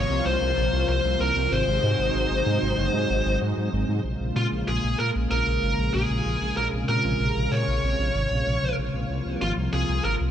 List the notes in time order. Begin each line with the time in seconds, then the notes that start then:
Already playing: C3 F3 A#3 F4 C#5
0.10 C2
0.26 C2 C5
0.42 C2
0.57 A#1
0.73 C2
0.89 C2 C5
1.05 C2
1.20 C2 A#4
1.36 C2
1.52 G#1 F#3 G#3 D#4 C5
1.68 G#1
1.83 G#2
1.99 G#1
2.15 G#1
2.31 G#1
2.47 G#2
2.62 G#1
2.78 F#1
2.94 G#2
3.10 G#1
3.26 G#1
3.41 G#2
3.57 G#2
3.73 G#1
3.89 G#2
4.05 A#1 C#3 G#3 A#3 F4
4.21 A#1
4.36 A#2 F4
4.52 A#1
4.68 A#1 G#4
4.84 A#1
4.99 A#2 A#4
5.15 A#1
5.31 A#1 A#4
5.47 A#1
5.63 G#1
5.79 A#1
5.94 A#1 G#4
6.10 A#1
6.26 A#1
6.42 A#1
6.57 A#1 C3 A#4
6.73 A#1
6.89 A#2 A#4
7.05 A#1
7.20 A#1
7.36 A#1
7.52 A#2 C#5
7.68 A#1
7.84 A#1
7.99 A#1
8.15 G#1
8.31 A#1
8.47 A#1
8.63 A#1
8.79 A#1
8.94 A#1
9.10 C2 C3 F3 A#3
9.26 C2
9.42 G#1 F4
9.58 C2
9.73 C2 G#4
9.89 C2
10.04 G#1 A#4
10.21 C2